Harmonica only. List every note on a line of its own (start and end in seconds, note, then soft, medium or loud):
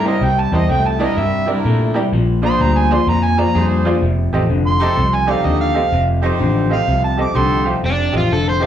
0.08 0.25 D#5 medium
0.24 0.42 G5 medium
0.40 0.58 A5 medium
0.56 0.73 D#5 medium
0.71 0.88 G5 medium
0.87 1.04 A5 medium
1.03 1.20 D#5 medium
1.18 1.47 E5 medium
2.46 2.63 C6 loud
2.62 2.79 A#5 medium
2.77 2.95 G#5 medium
2.93 3.08 C6 loud
3.09 3.26 A#5 medium
3.24 3.41 G#5 medium
3.40 3.65 A#5 loud
4.67 5.16 C6 medium
5.15 5.29 G#5 medium
5.30 5.47 F5 medium
5.46 5.60 D#5 medium
5.61 6.07 F5 loud
6.72 7.03 F5 loud
7.04 7.19 A5 medium
7.21 7.39 D6 medium
7.38 7.66 C6 loud